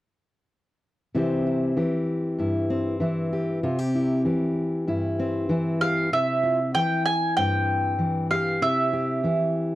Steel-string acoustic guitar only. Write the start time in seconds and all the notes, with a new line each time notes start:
1.15 C3 E3 C4 E4 G4
1.46 E4
1.77 E3 G4
2.38 G2 E4
2.70 C4
3.00 E3 E4
3.33 G4
3.63 C3 F4
3.79 G4
3.95 E4
4.25 E3 G4
4.87 G2 E4
5.19 C4
5.49 E3 E4
5.81 G4
6.12 C3 E4
6.43 F4
6.75 E3 E4
7.37 G2 C4
7.99 E3
8.31 G4
8.62 C3 E4
8.93 G4
9.24 E3 E4